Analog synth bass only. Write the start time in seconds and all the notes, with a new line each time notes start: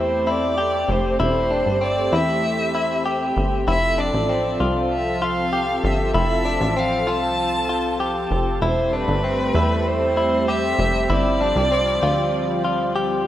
Already playing: E2
0.89 F1
1.20 E1
1.66 G1
2.13 E2
3.37 G1
3.67 F1
4.14 A1
4.60 C2
5.84 G1
6.14 F1
6.61 A1
7.07 C2
8.31 F1
8.62 E1
9.08 G1
9.55 E2
10.79 F1
11.10 G1
11.56 C2
12.03 D2